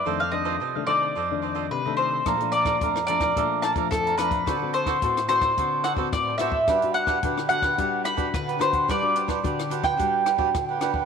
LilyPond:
<<
  \new Staff \with { instrumentName = "Mandolin" } { \time 4/4 \key g \major \tempo 4 = 109 d''16 f''16 ees''4 d''4. b'8 c''8~ | c''8 d''4 d''4 a''8 a'8 b'8~ | b'8 c''4 c''4 fis''8 d''8 e''8~ | e''8 fis''4 fis''4 b''8 b'8 c''8 |
d''4.~ d''16 g''4. r8. | }
  \new Staff \with { instrumentName = "Cavaquinho" } { \time 4/4 \key g \major <f' a' c'' ees''>8 <f' a' c'' ees''>16 <f' a' c'' ees''>16 <f' a' c'' ees''>8 <f' a' c'' ees''>16 <a' c'' ees''>16 <f' a' c'' ees''>8 <f' a' c'' ees''>16 <f' a' c'' ees''>16 r16 <a' c'' ees''>16 <f' a' c'' ees''>16 <a' c'' ees''>16 | <a' d'' f'' bes''>8 <a' d'' f'' bes''>16 <a' d'' f'' bes''>16 <a' d'' f'' bes''>8 <a' d'' f'' bes''>16 <d'' f'' bes''>16 <a' d'' f'' bes''>8 <a' d'' f'' bes''>16 <a' d'' f'' bes''>16 r16 <d'' f'' bes''>16 <a' d'' f'' bes''>16 <d'' f'' bes''>16 | <fis' a' c'' d''>8 <fis' a' c'' d''>16 <fis' a' c'' d''>16 <fis' a' c'' d''>8 <fis' a' c'' d''>16 <a' c'' d''>16 <fis' a' c'' d''>8 <fis' a' c'' d''>16 <fis' a' c'' d''>16 r16 <a' c'' d''>16 <fis' a' c'' d''>16 <a' c'' d''>16 | <d' g' b' fis''>8 <d' g' b' fis''>16 <d' g' b' fis''>16 <d' g' b' fis''>8 <d' g' b' fis''>16 <g' b'>16 <d' g' b' fis''>8 <d' g' b' fis''>16 <d' g' b' fis''>16 r16 <g' b' fis''>16 <d' g' b' fis''>16 <g' b' fis''>16 |
<d' g' b' fis''>8 <d' g' b' fis''>16 <d' g' b' fis''>16 <d' g' b' fis''>8 <d' g' b' fis''>16 <g' b' fis''>16 <d' g' b' fis''>8 <d' g' b' fis''>16 <d' g' b' fis''>16 r16 <g' b' fis''>16 <d' g' b' fis''>16 <g' b' fis''>16 | }
  \new Staff \with { instrumentName = "Nylon-string guitar" } { \time 4/4 \key g \major << { <ees a d'>16 r16 <ees a d'>8 r16 <ees a d'>16 <ees a d'>8 r16 <ees a d'>4 <ees a d'>8. | <f a d'>16 <f a d'>8. <f a d'>16 r16 <f a d'>8 <f a d'>8. <f a d'>8. <f a d'>8 | <c' fis' b'>16 <c' fis' b'>8. <c' fis' b'>16 r16 <c' fis' b'>8 <c' fis' b'>8 r16 <c' fis' b'>8. <c' fis' b'>16 r16 | <d' fis' b'>16 <d' fis' b'>8. <d' fis' b'>16 r16 <d' fis' b'>8 <d' fis' b'>8. <d' fis' b'>8. <d' fis' b'>8 |
r16 <d' fis' b'>8. <d' fis' b'>16 r16 <d' fis' b'>8 <d' fis' b'>8 r16 <d' fis' b'>8. <d' fis' b'>16 r16 | } \\ { f,4 c4 f,4 c4 | bes,4 f,4 bes,4 f,4 | d4 a,4 d4 a,4 | g4 d4 g4 d4 |
g4 d4 g4 d4 | } >> }
  \new DrumStaff \with { instrumentName = "Drums" } \drummode { \time 4/4 r4 r4 r4 r4 | <hh bd ss>16 hh16 hh16 <hh bd ss>16 <hh bd>16 ss16 hh16 <hh bd ss>16 <hh bd>8 <hh ss>16 <hh bd>16 <hh bd ss>16 hh16 <hh ss>16 <hh bd>16 | <hh bd ss>8 hh16 <hh bd ss>16 <hh bd>16 <hh ss>16 hh16 <hh bd ss>16 <hh bd>8 <hh ss>16 bd16 <hh bd ss>8 <hh ss>16 bd16 | <hh bd ss>16 hh16 hh16 <hh bd ss>16 <hh bd>16 ss16 hh16 <hh bd ss>16 <hh bd>8 <hh ss>16 <hh bd>16 <hh bd ss>16 hh16 <hh ss>16 <hh bd>16 |
<hh bd ss>8 hh16 <hh bd ss>16 <hh bd>16 <hh ss>16 hh16 <hh bd ss>16 <hh bd>8 <hh ss>16 bd16 <hh bd ss>8 <hh ss>16 bd16 | }
>>